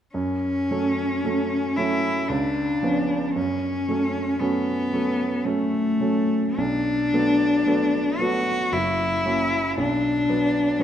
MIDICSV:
0, 0, Header, 1, 3, 480
1, 0, Start_track
1, 0, Key_signature, 3, "minor"
1, 0, Tempo, 1100917
1, 63, Time_signature, 3, 2, 24, 8
1, 542, Tempo, 1052632
1, 2462, Tempo, 1132075
1, 2942, Tempo, 1079137
1, 3422, Tempo, 1058201
1, 4382, Tempo, 1018676
1, 4879, End_track
2, 0, Start_track
2, 0, Title_t, "Cello"
2, 0, Program_c, 0, 42
2, 66, Note_on_c, 0, 61, 53
2, 779, Note_on_c, 0, 64, 51
2, 786, Note_off_c, 0, 61, 0
2, 1015, Note_on_c, 0, 62, 43
2, 1021, Note_off_c, 0, 64, 0
2, 1500, Note_off_c, 0, 62, 0
2, 1502, Note_on_c, 0, 61, 55
2, 1980, Note_on_c, 0, 59, 50
2, 1987, Note_off_c, 0, 61, 0
2, 2460, Note_on_c, 0, 57, 51
2, 2466, Note_off_c, 0, 59, 0
2, 2939, Note_on_c, 0, 62, 56
2, 2945, Note_off_c, 0, 57, 0
2, 3665, Note_on_c, 0, 66, 57
2, 3671, Note_off_c, 0, 62, 0
2, 3904, Note_on_c, 0, 64, 55
2, 3911, Note_off_c, 0, 66, 0
2, 4384, Note_off_c, 0, 64, 0
2, 4388, Note_on_c, 0, 62, 57
2, 4864, Note_on_c, 0, 61, 51
2, 4871, Note_off_c, 0, 62, 0
2, 4879, Note_off_c, 0, 61, 0
2, 4879, End_track
3, 0, Start_track
3, 0, Title_t, "Grand piano"
3, 0, Program_c, 1, 0
3, 62, Note_on_c, 1, 42, 34
3, 143, Control_c, 1, 64, 127
3, 299, Note_off_c, 1, 42, 0
3, 309, Note_on_c, 1, 54, 26
3, 310, Note_on_c, 1, 57, 26
3, 312, Note_on_c, 1, 61, 29
3, 526, Note_off_c, 1, 54, 0
3, 526, Note_off_c, 1, 57, 0
3, 527, Note_off_c, 1, 61, 0
3, 543, Note_on_c, 1, 54, 25
3, 545, Note_on_c, 1, 57, 25
3, 548, Note_on_c, 1, 61, 28
3, 764, Note_off_c, 1, 54, 0
3, 765, Note_off_c, 1, 57, 0
3, 767, Note_off_c, 1, 61, 0
3, 784, Note_on_c, 1, 54, 25
3, 786, Note_on_c, 1, 57, 26
3, 787, Note_on_c, 1, 61, 29
3, 1006, Note_off_c, 1, 54, 0
3, 1007, Note_off_c, 1, 57, 0
3, 1007, Note_off_c, 1, 61, 0
3, 1022, Note_on_c, 1, 37, 34
3, 1029, Control_c, 1, 64, 0
3, 1117, Control_c, 1, 64, 127
3, 1258, Note_off_c, 1, 37, 0
3, 1264, Note_on_c, 1, 53, 23
3, 1265, Note_on_c, 1, 59, 25
3, 1265, Note_on_c, 1, 61, 24
3, 1488, Note_off_c, 1, 53, 0
3, 1489, Note_off_c, 1, 59, 0
3, 1489, Note_off_c, 1, 61, 0
3, 1507, Note_on_c, 1, 42, 33
3, 1516, Control_c, 1, 64, 0
3, 1596, Control_c, 1, 64, 127
3, 1740, Note_off_c, 1, 42, 0
3, 1746, Note_on_c, 1, 54, 27
3, 1748, Note_on_c, 1, 57, 28
3, 1749, Note_on_c, 1, 61, 30
3, 1968, Note_off_c, 1, 54, 0
3, 1969, Note_off_c, 1, 57, 0
3, 1970, Note_off_c, 1, 61, 0
3, 1985, Note_on_c, 1, 54, 29
3, 1986, Note_on_c, 1, 57, 29
3, 1988, Note_on_c, 1, 61, 30
3, 2205, Note_off_c, 1, 54, 0
3, 2205, Note_off_c, 1, 57, 0
3, 2206, Note_off_c, 1, 61, 0
3, 2223, Note_on_c, 1, 54, 26
3, 2225, Note_on_c, 1, 57, 26
3, 2225, Note_on_c, 1, 61, 29
3, 2444, Note_off_c, 1, 54, 0
3, 2445, Note_off_c, 1, 57, 0
3, 2445, Note_off_c, 1, 61, 0
3, 2460, Note_on_c, 1, 54, 25
3, 2463, Note_on_c, 1, 57, 22
3, 2464, Note_on_c, 1, 61, 26
3, 2681, Note_off_c, 1, 54, 0
3, 2683, Note_off_c, 1, 57, 0
3, 2683, Note_off_c, 1, 61, 0
3, 2696, Note_on_c, 1, 54, 24
3, 2698, Note_on_c, 1, 57, 22
3, 2699, Note_on_c, 1, 61, 27
3, 2924, Note_off_c, 1, 54, 0
3, 2925, Note_off_c, 1, 57, 0
3, 2926, Note_off_c, 1, 61, 0
3, 2940, Note_on_c, 1, 35, 34
3, 2951, Control_c, 1, 64, 0
3, 3022, Control_c, 1, 64, 127
3, 3177, Note_off_c, 1, 35, 0
3, 3186, Note_on_c, 1, 54, 27
3, 3186, Note_on_c, 1, 57, 26
3, 3189, Note_on_c, 1, 59, 30
3, 3405, Note_off_c, 1, 54, 0
3, 3405, Note_off_c, 1, 57, 0
3, 3406, Note_off_c, 1, 59, 0
3, 3421, Note_on_c, 1, 54, 25
3, 3424, Note_on_c, 1, 57, 27
3, 3426, Note_on_c, 1, 59, 31
3, 3644, Note_off_c, 1, 54, 0
3, 3645, Note_off_c, 1, 57, 0
3, 3646, Note_off_c, 1, 59, 0
3, 3661, Note_on_c, 1, 54, 27
3, 3664, Note_on_c, 1, 57, 28
3, 3666, Note_on_c, 1, 59, 29
3, 3884, Note_off_c, 1, 54, 0
3, 3886, Note_off_c, 1, 57, 0
3, 3886, Note_off_c, 1, 59, 0
3, 3902, Note_on_c, 1, 30, 37
3, 3911, Control_c, 1, 64, 0
3, 3981, Control_c, 1, 64, 127
3, 4137, Note_off_c, 1, 30, 0
3, 4144, Note_on_c, 1, 54, 23
3, 4145, Note_on_c, 1, 58, 24
3, 4147, Note_on_c, 1, 61, 28
3, 4365, Note_off_c, 1, 54, 0
3, 4365, Note_off_c, 1, 58, 0
3, 4367, Note_off_c, 1, 61, 0
3, 4380, Note_on_c, 1, 35, 35
3, 4392, Control_c, 1, 64, 0
3, 4476, Control_c, 1, 64, 127
3, 4615, Note_off_c, 1, 35, 0
3, 4622, Note_on_c, 1, 54, 26
3, 4624, Note_on_c, 1, 59, 31
3, 4844, Note_off_c, 1, 54, 0
3, 4845, Note_off_c, 1, 59, 0
3, 4859, Note_on_c, 1, 54, 29
3, 4862, Note_on_c, 1, 59, 32
3, 4879, Note_off_c, 1, 54, 0
3, 4879, Note_off_c, 1, 59, 0
3, 4879, End_track
0, 0, End_of_file